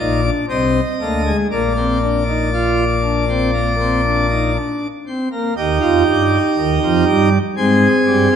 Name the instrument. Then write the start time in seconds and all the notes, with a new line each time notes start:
pipe organ
0.00 A#1 A#2 D#4 D5
0.23 D4
0.49 C2 C3 C4 D#5
1.00 D2 D3 A#3
1.26 G#3
1.51 A#1 A#2 A#3 D5
1.76 C4
2.02 D4
2.28 D#4
2.53 F4
3.03 D4
3.29 C4
3.53 A#3
3.79 C4
4.04 D4
4.30 D#4
4.56 D4
5.07 C4
5.32 A#3
5.57 D#2 D#3 D#4 G4
5.81 F2 F3
6.07 G2 G3
6.57 D#2 D#3
6.83 F2 F3
7.07 G2 G3
7.57 G#2 G#3 C4 G#4
8.06 G2 G3
8.32 F2 F3